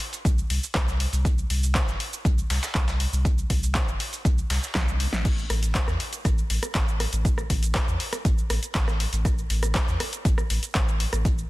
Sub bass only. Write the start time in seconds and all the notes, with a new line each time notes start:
0.25 C2
0.50 C2
0.75 C2
1.13 C2
1.50 C2
1.88 G1
2.25 C2
2.50 C2
2.75 C2
3.13 C2
3.50 C2
3.88 G1
4.25 C2
4.50 C2
4.75 C2
5.13 A1
5.50 A1
5.88 E2
6.25 A1
6.50 A1
6.75 A1
7.13 A1
7.50 A1
7.88 E2
8.25 A1
8.50 A1
8.75 A1
9.13 A1
9.50 A1
9.88 E2
10.25 A1
10.50 A1
10.75 A1
11.13 A1